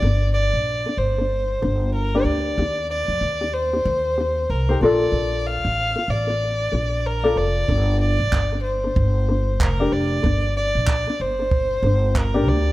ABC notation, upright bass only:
X:1
M:4/4
L:1/16
Q:"Swing 16ths" 1/4=94
K:Gm
V:1 name="Upright bass" clef=bass
G,,,3 B,,,2 z G,,,4 G,,,4 D,,2 | E,,3 F,, E,,4 E,,4 C,,2 B,,,2 | B,,,3 A,,,2 z A,,,4 B,,,4 F,,,2 | G,,,3 A,,, G,,,4 G,,,4 F,,,2 F,,,2 |
G,,,3 B,,,2 z G,,,4 G,,,4 D,,2 |]